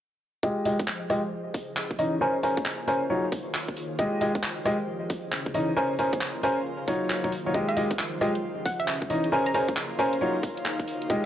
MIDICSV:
0, 0, Header, 1, 6, 480
1, 0, Start_track
1, 0, Tempo, 444444
1, 469, Time_signature, 4, 2, 24, 8
1, 12154, End_track
2, 0, Start_track
2, 0, Title_t, "Synth pluck"
2, 0, Program_c, 0, 84
2, 8301, Note_on_c, 0, 77, 85
2, 8499, Note_off_c, 0, 77, 0
2, 9348, Note_on_c, 0, 78, 86
2, 9470, Note_off_c, 0, 78, 0
2, 9500, Note_on_c, 0, 76, 88
2, 9556, Note_off_c, 0, 76, 0
2, 9589, Note_on_c, 0, 76, 72
2, 9686, Note_off_c, 0, 76, 0
2, 10221, Note_on_c, 0, 82, 85
2, 10277, Note_off_c, 0, 82, 0
2, 10309, Note_on_c, 0, 82, 73
2, 10406, Note_off_c, 0, 82, 0
2, 12154, End_track
3, 0, Start_track
3, 0, Title_t, "Analog synth pad"
3, 0, Program_c, 1, 89
3, 467, Note_on_c, 1, 65, 68
3, 801, Note_on_c, 1, 79, 71
3, 894, Note_on_c, 1, 72, 69
3, 1423, Note_on_c, 1, 61, 66
3, 1426, Note_off_c, 1, 79, 0
3, 1427, Note_off_c, 1, 72, 0
3, 1428, Note_off_c, 1, 65, 0
3, 1600, Note_on_c, 1, 68, 74
3, 1827, Note_on_c, 1, 75, 79
3, 2387, Note_on_c, 1, 70, 83
3, 2796, Note_off_c, 1, 61, 0
3, 2796, Note_off_c, 1, 75, 0
3, 2797, Note_off_c, 1, 68, 0
3, 2831, Note_on_c, 1, 77, 71
3, 2831, Note_on_c, 1, 84, 63
3, 3345, Note_on_c, 1, 63, 68
3, 3757, Note_off_c, 1, 84, 0
3, 4307, Note_on_c, 1, 65, 72
3, 4717, Note_off_c, 1, 63, 0
3, 4717, Note_off_c, 1, 70, 0
3, 4717, Note_off_c, 1, 77, 0
3, 4718, Note_on_c, 1, 72, 61
3, 4755, Note_on_c, 1, 79, 73
3, 5268, Note_off_c, 1, 65, 0
3, 5268, Note_off_c, 1, 72, 0
3, 5268, Note_on_c, 1, 61, 77
3, 5269, Note_off_c, 1, 79, 0
3, 5679, Note_on_c, 1, 68, 73
3, 5713, Note_on_c, 1, 75, 69
3, 6228, Note_on_c, 1, 70, 66
3, 6433, Note_on_c, 1, 84, 72
3, 6637, Note_off_c, 1, 68, 0
3, 6638, Note_off_c, 1, 61, 0
3, 6638, Note_off_c, 1, 75, 0
3, 6677, Note_on_c, 1, 77, 69
3, 7190, Note_on_c, 1, 63, 65
3, 7598, Note_off_c, 1, 84, 0
3, 8147, Note_on_c, 1, 65, 72
3, 8558, Note_off_c, 1, 70, 0
3, 8559, Note_off_c, 1, 63, 0
3, 8560, Note_off_c, 1, 77, 0
3, 8567, Note_on_c, 1, 72, 63
3, 8590, Note_on_c, 1, 79, 67
3, 9107, Note_off_c, 1, 72, 0
3, 9107, Note_off_c, 1, 79, 0
3, 9108, Note_off_c, 1, 65, 0
3, 9108, Note_on_c, 1, 61, 81
3, 9484, Note_on_c, 1, 75, 74
3, 9555, Note_on_c, 1, 68, 61
3, 10069, Note_on_c, 1, 70, 76
3, 10390, Note_on_c, 1, 84, 80
3, 10458, Note_on_c, 1, 77, 75
3, 10478, Note_off_c, 1, 61, 0
3, 10478, Note_off_c, 1, 75, 0
3, 10479, Note_off_c, 1, 68, 0
3, 11027, Note_on_c, 1, 63, 69
3, 11438, Note_off_c, 1, 84, 0
3, 11988, Note_on_c, 1, 65, 82
3, 12154, Note_off_c, 1, 63, 0
3, 12154, Note_off_c, 1, 65, 0
3, 12154, Note_off_c, 1, 70, 0
3, 12154, Note_off_c, 1, 77, 0
3, 12154, End_track
4, 0, Start_track
4, 0, Title_t, "Ambient pad"
4, 0, Program_c, 2, 92
4, 467, Note_on_c, 2, 68, 65
4, 467, Note_on_c, 2, 75, 80
4, 2368, Note_off_c, 2, 75, 0
4, 2389, Note_on_c, 2, 73, 81
4, 3319, Note_off_c, 2, 68, 0
4, 4290, Note_off_c, 2, 73, 0
4, 4308, Note_on_c, 2, 75, 84
4, 4309, Note_on_c, 2, 68, 70
4, 6209, Note_off_c, 2, 75, 0
4, 6229, Note_on_c, 2, 65, 69
4, 7160, Note_off_c, 2, 68, 0
4, 8129, Note_off_c, 2, 65, 0
4, 8149, Note_on_c, 2, 68, 69
4, 8149, Note_on_c, 2, 75, 83
4, 10049, Note_off_c, 2, 75, 0
4, 10067, Note_on_c, 2, 65, 65
4, 11000, Note_off_c, 2, 68, 0
4, 11969, Note_off_c, 2, 65, 0
4, 11986, Note_on_c, 2, 68, 68
4, 11987, Note_on_c, 2, 63, 67
4, 12154, Note_off_c, 2, 63, 0
4, 12154, Note_off_c, 2, 68, 0
4, 12154, End_track
5, 0, Start_track
5, 0, Title_t, "Grand piano"
5, 0, Program_c, 3, 0
5, 467, Note_on_c, 3, 56, 72
5, 467, Note_on_c, 3, 65, 66
5, 467, Note_on_c, 3, 67, 66
5, 467, Note_on_c, 3, 75, 78
5, 686, Note_off_c, 3, 65, 0
5, 686, Note_off_c, 3, 67, 0
5, 686, Note_off_c, 3, 75, 0
5, 687, Note_off_c, 3, 56, 0
5, 706, Note_on_c, 3, 56, 79
5, 706, Note_on_c, 3, 67, 69
5, 707, Note_on_c, 3, 65, 71
5, 707, Note_on_c, 3, 75, 82
5, 808, Note_off_c, 3, 56, 0
5, 808, Note_off_c, 3, 65, 0
5, 808, Note_off_c, 3, 67, 0
5, 808, Note_off_c, 3, 75, 0
5, 1187, Note_on_c, 3, 56, 80
5, 1187, Note_on_c, 3, 65, 68
5, 1187, Note_on_c, 3, 67, 74
5, 1187, Note_on_c, 3, 75, 87
5, 1288, Note_off_c, 3, 56, 0
5, 1288, Note_off_c, 3, 65, 0
5, 1288, Note_off_c, 3, 67, 0
5, 1288, Note_off_c, 3, 75, 0
5, 2146, Note_on_c, 3, 75, 80
5, 2147, Note_on_c, 3, 52, 72
5, 2147, Note_on_c, 3, 61, 68
5, 2147, Note_on_c, 3, 63, 69
5, 2305, Note_off_c, 3, 52, 0
5, 2305, Note_off_c, 3, 61, 0
5, 2305, Note_off_c, 3, 63, 0
5, 2305, Note_off_c, 3, 75, 0
5, 2386, Note_on_c, 3, 70, 75
5, 2386, Note_on_c, 3, 72, 78
5, 2387, Note_on_c, 3, 61, 87
5, 2387, Note_on_c, 3, 80, 98
5, 2544, Note_off_c, 3, 72, 0
5, 2545, Note_off_c, 3, 61, 0
5, 2545, Note_off_c, 3, 70, 0
5, 2545, Note_off_c, 3, 80, 0
5, 2626, Note_on_c, 3, 61, 73
5, 2626, Note_on_c, 3, 80, 82
5, 2627, Note_on_c, 3, 70, 69
5, 2627, Note_on_c, 3, 72, 66
5, 2785, Note_off_c, 3, 61, 0
5, 2785, Note_off_c, 3, 70, 0
5, 2785, Note_off_c, 3, 72, 0
5, 2785, Note_off_c, 3, 80, 0
5, 3107, Note_on_c, 3, 61, 85
5, 3107, Note_on_c, 3, 70, 78
5, 3107, Note_on_c, 3, 72, 78
5, 3107, Note_on_c, 3, 80, 93
5, 3265, Note_off_c, 3, 61, 0
5, 3265, Note_off_c, 3, 70, 0
5, 3265, Note_off_c, 3, 72, 0
5, 3265, Note_off_c, 3, 80, 0
5, 3346, Note_on_c, 3, 54, 74
5, 3346, Note_on_c, 3, 63, 68
5, 3346, Note_on_c, 3, 65, 69
5, 3347, Note_on_c, 3, 73, 82
5, 3505, Note_off_c, 3, 54, 0
5, 3505, Note_off_c, 3, 63, 0
5, 3505, Note_off_c, 3, 65, 0
5, 3505, Note_off_c, 3, 73, 0
5, 4307, Note_on_c, 3, 65, 68
5, 4307, Note_on_c, 3, 67, 68
5, 4308, Note_on_c, 3, 56, 74
5, 4308, Note_on_c, 3, 75, 85
5, 4527, Note_off_c, 3, 56, 0
5, 4527, Note_off_c, 3, 65, 0
5, 4527, Note_off_c, 3, 67, 0
5, 4527, Note_off_c, 3, 75, 0
5, 4547, Note_on_c, 3, 56, 80
5, 4547, Note_on_c, 3, 65, 70
5, 4547, Note_on_c, 3, 67, 71
5, 4547, Note_on_c, 3, 75, 84
5, 4648, Note_off_c, 3, 56, 0
5, 4648, Note_off_c, 3, 65, 0
5, 4648, Note_off_c, 3, 67, 0
5, 4648, Note_off_c, 3, 75, 0
5, 5027, Note_on_c, 3, 56, 81
5, 5027, Note_on_c, 3, 65, 75
5, 5027, Note_on_c, 3, 67, 74
5, 5027, Note_on_c, 3, 75, 87
5, 5128, Note_off_c, 3, 56, 0
5, 5128, Note_off_c, 3, 67, 0
5, 5129, Note_off_c, 3, 65, 0
5, 5129, Note_off_c, 3, 75, 0
5, 5987, Note_on_c, 3, 52, 74
5, 5987, Note_on_c, 3, 61, 71
5, 5987, Note_on_c, 3, 63, 70
5, 5987, Note_on_c, 3, 75, 82
5, 6145, Note_off_c, 3, 52, 0
5, 6145, Note_off_c, 3, 61, 0
5, 6145, Note_off_c, 3, 63, 0
5, 6145, Note_off_c, 3, 75, 0
5, 6227, Note_on_c, 3, 61, 88
5, 6227, Note_on_c, 3, 70, 78
5, 6227, Note_on_c, 3, 72, 80
5, 6227, Note_on_c, 3, 80, 97
5, 6385, Note_off_c, 3, 61, 0
5, 6385, Note_off_c, 3, 70, 0
5, 6385, Note_off_c, 3, 72, 0
5, 6385, Note_off_c, 3, 80, 0
5, 6467, Note_on_c, 3, 61, 74
5, 6467, Note_on_c, 3, 70, 69
5, 6467, Note_on_c, 3, 80, 81
5, 6468, Note_on_c, 3, 72, 69
5, 6625, Note_off_c, 3, 61, 0
5, 6625, Note_off_c, 3, 70, 0
5, 6625, Note_off_c, 3, 72, 0
5, 6625, Note_off_c, 3, 80, 0
5, 6947, Note_on_c, 3, 70, 81
5, 6948, Note_on_c, 3, 61, 86
5, 6948, Note_on_c, 3, 72, 81
5, 6948, Note_on_c, 3, 80, 96
5, 7105, Note_off_c, 3, 61, 0
5, 7105, Note_off_c, 3, 70, 0
5, 7105, Note_off_c, 3, 72, 0
5, 7105, Note_off_c, 3, 80, 0
5, 7427, Note_on_c, 3, 54, 78
5, 7427, Note_on_c, 3, 63, 74
5, 7427, Note_on_c, 3, 65, 72
5, 7427, Note_on_c, 3, 73, 93
5, 7783, Note_off_c, 3, 54, 0
5, 7783, Note_off_c, 3, 63, 0
5, 7783, Note_off_c, 3, 65, 0
5, 7783, Note_off_c, 3, 73, 0
5, 7819, Note_on_c, 3, 73, 78
5, 7820, Note_on_c, 3, 54, 71
5, 7820, Note_on_c, 3, 63, 63
5, 7820, Note_on_c, 3, 65, 64
5, 7878, Note_off_c, 3, 54, 0
5, 7878, Note_off_c, 3, 63, 0
5, 7878, Note_off_c, 3, 65, 0
5, 7878, Note_off_c, 3, 73, 0
5, 8060, Note_on_c, 3, 54, 69
5, 8060, Note_on_c, 3, 63, 60
5, 8060, Note_on_c, 3, 65, 60
5, 8060, Note_on_c, 3, 73, 75
5, 8118, Note_off_c, 3, 54, 0
5, 8118, Note_off_c, 3, 63, 0
5, 8118, Note_off_c, 3, 65, 0
5, 8118, Note_off_c, 3, 73, 0
5, 8147, Note_on_c, 3, 75, 81
5, 8148, Note_on_c, 3, 56, 74
5, 8148, Note_on_c, 3, 65, 68
5, 8148, Note_on_c, 3, 67, 66
5, 8367, Note_off_c, 3, 56, 0
5, 8367, Note_off_c, 3, 65, 0
5, 8367, Note_off_c, 3, 67, 0
5, 8367, Note_off_c, 3, 75, 0
5, 8387, Note_on_c, 3, 56, 78
5, 8387, Note_on_c, 3, 65, 72
5, 8387, Note_on_c, 3, 67, 74
5, 8387, Note_on_c, 3, 75, 90
5, 8488, Note_off_c, 3, 56, 0
5, 8488, Note_off_c, 3, 65, 0
5, 8488, Note_off_c, 3, 67, 0
5, 8488, Note_off_c, 3, 75, 0
5, 8867, Note_on_c, 3, 56, 82
5, 8867, Note_on_c, 3, 65, 75
5, 8867, Note_on_c, 3, 67, 74
5, 8867, Note_on_c, 3, 75, 88
5, 8968, Note_off_c, 3, 56, 0
5, 8968, Note_off_c, 3, 65, 0
5, 8968, Note_off_c, 3, 67, 0
5, 8968, Note_off_c, 3, 75, 0
5, 9827, Note_on_c, 3, 52, 76
5, 9827, Note_on_c, 3, 63, 72
5, 9828, Note_on_c, 3, 61, 69
5, 9828, Note_on_c, 3, 75, 86
5, 9985, Note_off_c, 3, 52, 0
5, 9985, Note_off_c, 3, 61, 0
5, 9985, Note_off_c, 3, 63, 0
5, 9985, Note_off_c, 3, 75, 0
5, 10067, Note_on_c, 3, 70, 82
5, 10067, Note_on_c, 3, 72, 78
5, 10067, Note_on_c, 3, 80, 98
5, 10068, Note_on_c, 3, 61, 88
5, 10225, Note_off_c, 3, 61, 0
5, 10225, Note_off_c, 3, 70, 0
5, 10225, Note_off_c, 3, 72, 0
5, 10225, Note_off_c, 3, 80, 0
5, 10307, Note_on_c, 3, 61, 75
5, 10307, Note_on_c, 3, 70, 70
5, 10307, Note_on_c, 3, 72, 67
5, 10307, Note_on_c, 3, 80, 81
5, 10465, Note_off_c, 3, 61, 0
5, 10465, Note_off_c, 3, 70, 0
5, 10465, Note_off_c, 3, 72, 0
5, 10465, Note_off_c, 3, 80, 0
5, 10787, Note_on_c, 3, 61, 89
5, 10787, Note_on_c, 3, 70, 80
5, 10787, Note_on_c, 3, 72, 84
5, 10788, Note_on_c, 3, 80, 98
5, 10945, Note_off_c, 3, 61, 0
5, 10945, Note_off_c, 3, 70, 0
5, 10945, Note_off_c, 3, 72, 0
5, 10945, Note_off_c, 3, 80, 0
5, 11028, Note_on_c, 3, 54, 74
5, 11028, Note_on_c, 3, 65, 69
5, 11028, Note_on_c, 3, 73, 86
5, 11029, Note_on_c, 3, 63, 71
5, 11185, Note_off_c, 3, 54, 0
5, 11186, Note_off_c, 3, 63, 0
5, 11186, Note_off_c, 3, 65, 0
5, 11186, Note_off_c, 3, 73, 0
5, 11987, Note_on_c, 3, 56, 76
5, 11987, Note_on_c, 3, 65, 71
5, 11987, Note_on_c, 3, 67, 68
5, 11987, Note_on_c, 3, 75, 83
5, 12154, Note_off_c, 3, 56, 0
5, 12154, Note_off_c, 3, 65, 0
5, 12154, Note_off_c, 3, 67, 0
5, 12154, Note_off_c, 3, 75, 0
5, 12154, End_track
6, 0, Start_track
6, 0, Title_t, "Drums"
6, 467, Note_on_c, 9, 36, 108
6, 575, Note_off_c, 9, 36, 0
6, 706, Note_on_c, 9, 46, 93
6, 814, Note_off_c, 9, 46, 0
6, 859, Note_on_c, 9, 36, 96
6, 946, Note_on_c, 9, 39, 103
6, 967, Note_off_c, 9, 36, 0
6, 1054, Note_off_c, 9, 39, 0
6, 1187, Note_on_c, 9, 37, 62
6, 1187, Note_on_c, 9, 46, 96
6, 1295, Note_off_c, 9, 37, 0
6, 1295, Note_off_c, 9, 46, 0
6, 1667, Note_on_c, 9, 36, 91
6, 1668, Note_on_c, 9, 46, 96
6, 1775, Note_off_c, 9, 36, 0
6, 1776, Note_off_c, 9, 46, 0
6, 1907, Note_on_c, 9, 39, 103
6, 2015, Note_off_c, 9, 39, 0
6, 2059, Note_on_c, 9, 36, 56
6, 2146, Note_on_c, 9, 46, 99
6, 2167, Note_off_c, 9, 36, 0
6, 2254, Note_off_c, 9, 46, 0
6, 2627, Note_on_c, 9, 46, 96
6, 2735, Note_off_c, 9, 46, 0
6, 2779, Note_on_c, 9, 36, 103
6, 2867, Note_on_c, 9, 39, 113
6, 2887, Note_off_c, 9, 36, 0
6, 2975, Note_off_c, 9, 39, 0
6, 3107, Note_on_c, 9, 46, 95
6, 3215, Note_off_c, 9, 46, 0
6, 3587, Note_on_c, 9, 36, 101
6, 3587, Note_on_c, 9, 46, 97
6, 3695, Note_off_c, 9, 36, 0
6, 3695, Note_off_c, 9, 46, 0
6, 3827, Note_on_c, 9, 39, 115
6, 3935, Note_off_c, 9, 39, 0
6, 3980, Note_on_c, 9, 36, 58
6, 4068, Note_on_c, 9, 46, 96
6, 4088, Note_off_c, 9, 36, 0
6, 4176, Note_off_c, 9, 46, 0
6, 4307, Note_on_c, 9, 36, 116
6, 4415, Note_off_c, 9, 36, 0
6, 4547, Note_on_c, 9, 46, 92
6, 4655, Note_off_c, 9, 46, 0
6, 4700, Note_on_c, 9, 36, 103
6, 4787, Note_on_c, 9, 39, 114
6, 4808, Note_off_c, 9, 36, 0
6, 4895, Note_off_c, 9, 39, 0
6, 5027, Note_on_c, 9, 37, 62
6, 5027, Note_on_c, 9, 46, 94
6, 5135, Note_off_c, 9, 37, 0
6, 5135, Note_off_c, 9, 46, 0
6, 5507, Note_on_c, 9, 36, 100
6, 5507, Note_on_c, 9, 46, 94
6, 5615, Note_off_c, 9, 36, 0
6, 5615, Note_off_c, 9, 46, 0
6, 5747, Note_on_c, 9, 39, 116
6, 5855, Note_off_c, 9, 39, 0
6, 5900, Note_on_c, 9, 36, 58
6, 5987, Note_on_c, 9, 46, 96
6, 6008, Note_off_c, 9, 36, 0
6, 6095, Note_off_c, 9, 46, 0
6, 6467, Note_on_c, 9, 46, 94
6, 6575, Note_off_c, 9, 46, 0
6, 6620, Note_on_c, 9, 36, 100
6, 6707, Note_on_c, 9, 39, 107
6, 6728, Note_off_c, 9, 36, 0
6, 6815, Note_off_c, 9, 39, 0
6, 6947, Note_on_c, 9, 46, 90
6, 7055, Note_off_c, 9, 46, 0
6, 7428, Note_on_c, 9, 36, 100
6, 7428, Note_on_c, 9, 46, 90
6, 7536, Note_off_c, 9, 36, 0
6, 7536, Note_off_c, 9, 46, 0
6, 7667, Note_on_c, 9, 39, 116
6, 7775, Note_off_c, 9, 39, 0
6, 7820, Note_on_c, 9, 36, 58
6, 7908, Note_on_c, 9, 46, 98
6, 7928, Note_off_c, 9, 36, 0
6, 8016, Note_off_c, 9, 46, 0
6, 8148, Note_on_c, 9, 36, 113
6, 8256, Note_off_c, 9, 36, 0
6, 8301, Note_on_c, 9, 42, 51
6, 8388, Note_on_c, 9, 46, 94
6, 8409, Note_off_c, 9, 42, 0
6, 8496, Note_off_c, 9, 46, 0
6, 8541, Note_on_c, 9, 36, 94
6, 8542, Note_on_c, 9, 42, 61
6, 8629, Note_on_c, 9, 39, 110
6, 8649, Note_off_c, 9, 36, 0
6, 8650, Note_off_c, 9, 42, 0
6, 8737, Note_off_c, 9, 39, 0
6, 8870, Note_on_c, 9, 37, 58
6, 8870, Note_on_c, 9, 46, 93
6, 8978, Note_off_c, 9, 37, 0
6, 8978, Note_off_c, 9, 46, 0
6, 9021, Note_on_c, 9, 42, 62
6, 9129, Note_off_c, 9, 42, 0
6, 9348, Note_on_c, 9, 36, 97
6, 9349, Note_on_c, 9, 46, 89
6, 9456, Note_off_c, 9, 36, 0
6, 9457, Note_off_c, 9, 46, 0
6, 9501, Note_on_c, 9, 42, 63
6, 9588, Note_on_c, 9, 39, 109
6, 9609, Note_off_c, 9, 42, 0
6, 9696, Note_off_c, 9, 39, 0
6, 9740, Note_on_c, 9, 36, 54
6, 9741, Note_on_c, 9, 42, 49
6, 9827, Note_on_c, 9, 46, 95
6, 9848, Note_off_c, 9, 36, 0
6, 9849, Note_off_c, 9, 42, 0
6, 9935, Note_off_c, 9, 46, 0
6, 9980, Note_on_c, 9, 42, 59
6, 10088, Note_off_c, 9, 42, 0
6, 10219, Note_on_c, 9, 42, 52
6, 10307, Note_on_c, 9, 46, 94
6, 10327, Note_off_c, 9, 42, 0
6, 10415, Note_off_c, 9, 46, 0
6, 10459, Note_on_c, 9, 42, 63
6, 10460, Note_on_c, 9, 36, 95
6, 10546, Note_on_c, 9, 39, 102
6, 10567, Note_off_c, 9, 42, 0
6, 10568, Note_off_c, 9, 36, 0
6, 10654, Note_off_c, 9, 39, 0
6, 10787, Note_on_c, 9, 46, 100
6, 10895, Note_off_c, 9, 46, 0
6, 10940, Note_on_c, 9, 42, 63
6, 11048, Note_off_c, 9, 42, 0
6, 11267, Note_on_c, 9, 36, 97
6, 11268, Note_on_c, 9, 46, 98
6, 11375, Note_off_c, 9, 36, 0
6, 11376, Note_off_c, 9, 46, 0
6, 11420, Note_on_c, 9, 42, 63
6, 11508, Note_on_c, 9, 39, 108
6, 11528, Note_off_c, 9, 42, 0
6, 11616, Note_off_c, 9, 39, 0
6, 11659, Note_on_c, 9, 36, 55
6, 11659, Note_on_c, 9, 42, 49
6, 11747, Note_on_c, 9, 46, 96
6, 11767, Note_off_c, 9, 36, 0
6, 11767, Note_off_c, 9, 42, 0
6, 11855, Note_off_c, 9, 46, 0
6, 11900, Note_on_c, 9, 42, 65
6, 11987, Note_on_c, 9, 36, 107
6, 12008, Note_off_c, 9, 42, 0
6, 12095, Note_off_c, 9, 36, 0
6, 12154, End_track
0, 0, End_of_file